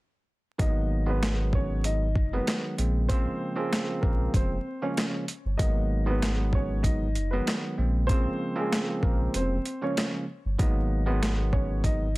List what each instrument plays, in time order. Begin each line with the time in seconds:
0.58 sub bass G#1, tine electric piano D#3 F#3 G#3 A#3 B3, upright piano D#4 D#5, kick, closed hi-hat
1.06 tine electric piano D#3 F#3 G#3 B3, upright piano B4
1.10 upright piano B3
1.23 snare, clap, closed hi-hat
1.53 upright piano C#4 C#5, kick
1.84 upright piano D#4 D#5, closed hi-hat
2.15 sub bass F#1, kick
2.33 tine electric piano D#3 F#3 G#3 B3, upright piano B3 B4
2.47 snare, clap, closed hi-hat
2.78 sub bass A#1, tine electric piano C#3 F3 G#3 A#3 C4, closed hi-hat
3.08 tine electric piano C#3 F3 G#3 A#3 C4, upright piano C4 C5, kick, closed hi-hat
3.55 tine electric piano C#3 F3 G#3 A#3 C4, upright piano G#3 G#4
3.73 snare, clap, closed hi-hat
4.02 sub bass A#1, upright piano A#3 A#4, kick
4.34 sub bass F1, upright piano C4 C5, kick, closed hi-hat
4.82 tine electric piano C#3 F3 G#3 A#3 C#4, upright piano C#4 C#5
4.97 snare, clap, closed hi-hat
5.28 closed hi-hat
5.45 sub bass G1
5.57 sub bass G#1, tine electric piano D#3 F#3 G#3 A#3 B3, upright piano D#4 D#5, kick, closed hi-hat
6.06 tine electric piano D#3 F#3 G#3 B3
6.10 upright piano B3 B4
6.22 snare, clap, closed hi-hat
6.53 upright piano C#4 C#5, kick
6.83 upright piano D#4 D#5, kick, closed hi-hat
7.15 sub bass F#1, closed hi-hat
7.31 tine electric piano D#3 F#3 G#3 B3, upright piano B3 B4
7.47 snare, clap, closed hi-hat
7.78 sub bass A#1, tine electric piano C#3 F3 G#3 A#3 C4
8.07 tine electric piano C#3 F3 G#3 A#3 C4, upright piano C4 C5, kick, closed hi-hat
8.55 tine electric piano C#3 F3 G#3 A#3 C4, upright piano G#3 G#4
8.72 snare, clap, closed hi-hat
9.03 sub bass A#1, upright piano A#3 A#4, kick
9.34 sub bass F1, upright piano C4 C5, closed hi-hat
9.65 closed hi-hat
9.82 tine electric piano C#3 F3 G#3 A#3 C#4, upright piano C#4 C#5
9.97 snare, clap, closed hi-hat
10.45 sub bass G1
10.58 sub bass G#1, tine electric piano D#3 F#3 G#3 A#3 B3, upright piano D#4 D#5, kick, closed hi-hat
11.06 tine electric piano D#3 F#3 G#3 B3, upright piano B3 B4
11.23 snare, clap, closed hi-hat
11.53 upright piano C#4 C#5, kick
11.84 upright piano D#4 D#5, kick, closed hi-hat